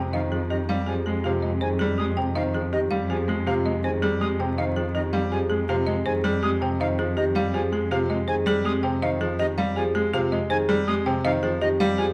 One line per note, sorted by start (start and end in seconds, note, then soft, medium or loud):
0.00 12.13 F2 medium
0.00 0.19 C3 medium
0.00 0.19 G5 medium
0.13 0.37 D#3 medium
0.13 0.37 C5 medium
0.13 0.37 D#5 medium
0.13 0.20 F5 medium
0.32 0.56 F3 medium
0.32 0.56 G#4 medium
0.50 0.74 D#3 medium
0.50 0.74 G4 loud
0.50 0.74 G4 medium
0.50 0.57 D#5 medium
0.69 0.93 G3 loud
0.69 0.93 F5 medium
0.87 1.12 F3 medium
0.87 1.11 G4 medium
0.87 1.11 G#4 medium
0.87 0.94 G#5 medium
1.06 1.30 G#3 medium
1.06 1.30 G#4 medium
1.24 1.49 C3 medium
1.24 1.48 F4 medium
1.24 1.48 G4 medium
1.24 1.31 F5 medium
1.42 1.67 G#3 medium
1.42 1.67 D#5 medium
1.61 1.86 D#3 medium
1.61 1.86 G#4 medium
1.61 1.85 C5 medium
1.61 1.68 G#5 medium
1.79 2.04 G3 loud
1.79 2.04 G#4 medium
1.98 2.23 G#3 medium
1.98 2.23 C4 medium
1.98 2.22 G4 medium
1.98 2.05 D#6 medium
2.17 2.41 C3 medium
2.17 2.41 G5 medium
2.35 2.60 D#3 medium
2.35 2.60 C5 medium
2.35 2.60 D#5 loud
2.35 2.42 F5 medium
2.54 2.78 F3 medium
2.54 2.78 G#4 medium
2.72 2.97 D#3 medium
2.72 2.97 G4 loud
2.72 2.97 G4 medium
2.72 2.79 D#5 medium
2.91 3.15 G3 medium
2.91 3.15 F5 medium
3.10 3.34 F3 medium
3.10 3.34 G4 medium
3.10 3.34 G#4 medium
3.10 3.17 G#5 medium
3.28 3.52 G#3 medium
3.28 3.52 G#4 medium
3.46 3.71 C3 loud
3.46 3.71 F4 medium
3.46 3.71 G4 loud
3.46 3.54 F5 medium
3.65 3.89 G#3 medium
3.65 3.89 D#5 medium
3.84 4.08 D#3 medium
3.84 4.08 G#4 medium
3.84 4.08 C5 medium
3.84 3.91 G#5 medium
4.02 4.26 G3 loud
4.02 4.26 G#4 loud
4.21 4.45 G#3 medium
4.21 4.45 C4 medium
4.21 4.45 G4 medium
4.21 4.28 D#6 medium
4.39 4.63 C3 medium
4.39 4.63 G5 medium
4.57 4.82 D#3 medium
4.57 4.82 C5 medium
4.57 4.82 D#5 medium
4.57 4.64 F5 medium
4.76 5.00 F3 medium
4.76 5.00 G#4 medium
4.94 5.19 D#3 medium
4.94 5.19 G4 medium
4.94 5.19 G4 loud
4.94 5.01 D#5 medium
5.13 5.37 G3 loud
5.13 5.37 F5 medium
5.32 5.56 F3 medium
5.32 5.56 G4 medium
5.32 5.56 G#4 medium
5.32 5.38 G#5 medium
5.50 5.75 G#3 medium
5.50 5.74 G#4 medium
5.69 5.93 C3 loud
5.69 5.93 F4 medium
5.69 5.93 G4 loud
5.69 5.76 F5 medium
5.87 6.11 G#3 medium
5.87 6.11 D#5 medium
6.06 6.30 D#3 medium
6.06 6.30 G#4 loud
6.06 6.30 C5 medium
6.06 6.13 G#5 medium
6.24 6.48 G3 loud
6.24 6.48 G#4 medium
6.43 6.67 G#3 medium
6.43 6.67 C4 medium
6.43 6.67 G4 medium
6.43 6.50 D#6 medium
6.61 6.85 C3 medium
6.61 6.86 G5 medium
6.80 7.04 D#3 loud
6.80 7.04 C5 medium
6.80 7.04 D#5 loud
6.80 6.87 F5 medium
6.99 7.23 F3 medium
6.99 7.23 G#4 medium
7.17 7.41 D#3 medium
7.17 7.41 G4 medium
7.17 7.41 G4 loud
7.17 7.24 D#5 loud
7.35 7.59 G3 loud
7.35 7.60 F5 loud
7.54 7.78 F3 medium
7.54 7.78 G4 medium
7.54 7.78 G#4 medium
7.54 7.61 G#5 medium
7.72 7.96 G#3 medium
7.72 7.97 G#4 medium
7.91 8.15 C3 loud
7.91 8.15 F4 medium
7.91 8.15 G4 medium
7.91 7.98 F5 medium
8.10 8.34 G#3 medium
8.10 8.34 D#5 medium
8.28 8.52 D#3 medium
8.28 8.52 G#4 loud
8.28 8.52 C5 medium
8.28 8.35 G#5 loud
8.46 8.70 G3 loud
8.46 8.71 G#4 loud
8.65 8.89 G#3 medium
8.65 8.89 C4 medium
8.65 8.89 G4 medium
8.65 8.72 D#6 medium
8.83 9.08 C3 medium
8.83 9.07 G5 medium
9.02 9.26 D#3 medium
9.02 9.26 C5 medium
9.02 9.26 D#5 loud
9.02 9.09 F5 medium
9.21 9.45 F3 loud
9.21 9.45 G#4 medium
9.39 9.63 D#3 medium
9.39 9.63 G4 loud
9.39 9.63 G4 medium
9.39 9.46 D#5 loud
9.58 9.82 G3 loud
9.58 9.82 F5 loud
9.76 10.01 F3 medium
9.76 10.00 G4 medium
9.76 10.00 G#4 loud
9.76 9.83 G#5 medium
9.95 10.19 G#3 medium
9.95 10.19 G#4 loud
10.13 10.37 C3 loud
10.13 10.37 F4 medium
10.13 10.37 G4 loud
10.13 10.20 F5 medium
10.32 10.56 G#3 medium
10.32 10.56 D#5 loud
10.50 10.74 D#3 medium
10.50 10.74 G#4 loud
10.50 10.74 C5 loud
10.50 10.57 G#5 loud
10.69 10.93 G3 loud
10.69 10.93 G#4 loud
10.87 11.12 G#3 loud
10.87 11.12 C4 medium
10.87 11.12 G4 medium
10.87 10.94 D#6 medium
11.06 11.30 C3 loud
11.06 11.30 G5 loud
11.24 11.49 D#3 loud
11.24 11.49 C5 medium
11.24 11.49 D#5 loud
11.24 11.31 F5 loud
11.43 11.67 F3 loud
11.43 11.67 G#4 medium
11.61 11.86 D#3 medium
11.61 11.86 G4 loud
11.61 11.86 G4 medium
11.61 11.68 D#5 loud
11.80 12.04 G3 loud
11.80 12.04 F5 loud
11.98 12.13 F3 medium
11.98 12.13 G4 medium
11.98 12.13 G#4 medium
11.98 12.05 G#5 medium